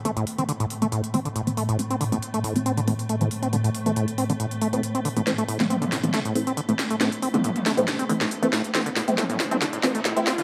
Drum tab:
HH |xxoxxxoxxxoxxxox|xxoxxxoxxxoxxxox|xxoxxxoxxxoxxxox|xxoxxxoxxxoxxxox|
SD |----------------|----------------|----------------|o--o--o-o-----o-|
T2 |----------------|----------------|----------------|---ooo-o--------|

HH |xxoxxxoxxxoxxxox|xxoxxxoxxxoxxxox|
SD |o-----o-o--o--o-|o-o-o-o-o-o-o-o-|
T2 |---ooo-o--------|---ooo-o--------|